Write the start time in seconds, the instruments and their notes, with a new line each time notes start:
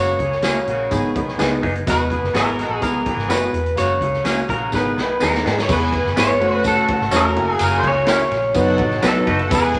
Already playing: fingered electric bass F#1, horn section C#3 A#3 F#4, reed electric piano G#3 A#3 C#4 F#4, clean electric guitar C#5
0.19 fingered electric bass C#2, horn section C#3 A#3 G#4, kick, closed hi-hat
0.32 snare
0.42 horn section C#3 A#3 G#4, reed electric piano G#3 A#3 C#4 F#4, clean electric guitar A#3 C#4 G#4, snare, closed hi-hat, tambourine
0.67 fingered electric bass A#1, horn section C#3 A#3 F#4, closed hi-hat
0.91 fingered electric bass G#1, horn section D#3 B3 G#4, reed electric piano G#3 B3 D#4 G#4, kick, closed hi-hat, tambourine
1.14 fingered electric bass B1, horn section D#3 B3 G#4, kick, closed hi-hat
1.28 snare
1.38 fingered electric bass C#2, reed electric piano G#3 B3 D#4 G#4, clean electric guitar B3 D#4 G#4, snare, closed hi-hat, tambourine
1.62 fingered electric bass F#1, clean electric guitar B3 D#4 G#4, kick, open hi-hat
1.75 closed hi-hat
1.86 fingered electric bass E1, horn section B2 G#3 F#4, reed electric piano G#3 B3 E4 F#4, clean electric guitar B4, kick, closed hi-hat, tambourine
2.10 horn section E3 B3 G#4, kick, closed hi-hat
2.22 fingered electric bass F#1, snare
2.33 fingered electric bass G#1, horn section E3 B3 G#4, reed electric piano G#3 B3 E4 G#4, clean electric guitar B3 F#4 G#4 A#4, snare, closed hi-hat, tambourine
2.47 closed hi-hat
2.59 horn section B2 G#3 F#4, snare, closed hi-hat
2.69 fingered electric bass A#1
2.80 fingered electric bass B1, horn section E3 B3 G#4, reed electric piano G#3 B3 E4 G#4, clean electric guitar A#4, kick, closed hi-hat, tambourine
3.06 horn section E3 B3 G#4, kick, closed hi-hat
3.17 fingered electric bass G#1, snare
3.28 fingered electric bass F#1, reed electric piano G#3 B3 E4 F#4, clean electric guitar B3 F#4 G#4 B4, snare, closed hi-hat, tambourine
3.53 fingered electric bass E1, closed hi-hat
3.66 closed hi-hat
3.76 fingered electric bass F#1, horn section C#3 A#3 F#4, reed electric piano G#3 A#3 C#4 F#4, clean electric guitar C#5, closed hi-hat, tambourine
4.01 fingered electric bass C#2, horn section C#3 A#3 G#4, kick, closed hi-hat
4.13 snare
4.24 horn section C#3 A#3 G#4, reed electric piano G#3 A#3 C#4 F#4, clean electric guitar A#3 C#4 G#4, snare, closed hi-hat, tambourine
4.38 closed hi-hat
4.49 fingered electric bass A#1, horn section C#3 A#3 F#4, clean electric guitar A#4, kick, closed hi-hat
4.72 fingered electric bass G#1, horn section D#3 B3 G#4, reed electric piano G#3 B3 D#4 G#4, clean electric guitar B4, kick, snare, tambourine
4.96 fingered electric bass B1, horn section D#3 B3 G#4, snare
5.20 fingered electric bass D#2, reed electric piano G#3 B3 D#4 G#4, clean electric guitar B3 D#4 G#4 A#4, vibraphone A#5, snare, tambourine
5.34 snare
5.45 fingered electric bass G#2, clean electric guitar B3 D#4 G#4, snare
5.58 vibraphone C#6, snare
5.63 clean electric guitar C#5
5.68 fingered electric bass E1, horn section E3 B3 G#4, reed electric piano G#3 B3 E4 G#4 B4, string section G#4 G#5, clean electric guitar B4, vibraphone B5, kick, crash, tambourine
5.92 kick, ride
6.05 fingered electric bass F#1, snare
6.16 reed electric piano G#3 B3 E4 G#4 B4, clean electric guitar B3 E4 G#4 C#5, vibraphone C#6, snare, ride, tambourine
6.40 fingered electric bass F#1, horn section C#3 A3 F#4, reed electric piano A3 C#4 F#4 A4 C5, string section F#4 F#5, ride
6.47 reed electric piano C#5
6.64 clean electric guitar A4, vibraphone A5, kick, ride, tambourine
6.88 kick, ride
7.01 fingered electric bass G#1, snare
7.11 fingered electric bass E1, reed electric piano A3 C#4 F#4 A4 C#5, clean electric guitar C#4 F#4 A4, snare, ride, tambourine
7.16 clean electric guitar A#4
7.35 fingered electric bass F#1, horn section C#3 A#3 F#4, reed electric piano A#3 C#4 E4 F#4 A#4, string section G#4 G#5, ride
7.59 fingered electric bass F#1, vibraphone A#5, ride, tambourine
7.64 clean electric guitar A#4
7.77 clean electric guitar C5, vibraphone C6
7.83 fingered electric bass C#2, vibraphone C#6, kick, ride
7.88 clean electric guitar C#5
8.06 reed electric piano A#3 C#4 E4 F#4 A#4, clean electric guitar C#4 E4 A#4, snare, ride, tambourine
8.19 ride
8.31 fingered electric bass A#1, snare, ride
8.54 fingered electric bass F#1, reed electric piano F#3 B3 D#4 F#4 B4, horn section F#3 D#4 A4, string section F#4 F#5, kick, ride, tambourine
8.78 fingered electric bass A1, kick, ride
8.91 snare
8.97 string section G#3 G#4
9.02 fingered electric bass B1, reed electric piano F#3 B3 D#4 F#4 B4, string section A3 A4, clean electric guitar D#4 F#4 B4, vibraphone A5, snare, ride, tambourine
9.08 clean electric guitar A4, string section B4
9.13 string section B3
9.20 string section C#4 C#5
9.27 fingered electric bass F#1, clean electric guitar D#4 F#4 B4, string section D#4 D#5, kick, ride
9.37 string section E4 E5, ride
9.44 string section F#4 F#5
9.49 fingered electric bass E1, horn section E3 B3 G#4, reed electric piano G#3 B3 E4 G#4 B4, string section G#4 G#5, kick, ride, tambourine
9.53 clean electric guitar B4, vibraphone B5
9.74 kick, ride